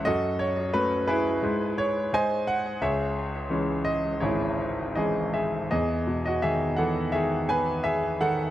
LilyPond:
<<
  \new Staff \with { instrumentName = "Grand piano" } { \time 4/4 \key cis \minor \tempo 4 = 85 << { dis''8 cis''8 b'8 b'4 cis''8 gis''8 fis''8 | e''4 r8 dis''8 cis''4 dis''8 e''8 | \key e \major dis''8. dis''16 e''8 fis''8 e''8 gis''8 e''8 fis''8 | } \\ { <fis' a'>4. <e' gis'>4. <bis' dis''>4 | <gis' cis''>2 <e' gis'>4 gis'8 gis'8 | gis'8. fis'16 gis'8 a'8 gis'8 b'8 gis'8 a'8 | } >> }
  \new Staff \with { instrumentName = "Grand piano" } { \clef bass \time 4/4 \key cis \minor fis,4 <fis a cis'>4 gis,4 gis,4 | cis,4 <e gis cis'>4 gis,,4 <e gis cis'>4 | \key e \major e,8 b,8 dis8 e8 dis8 b4 dis8 | }
>>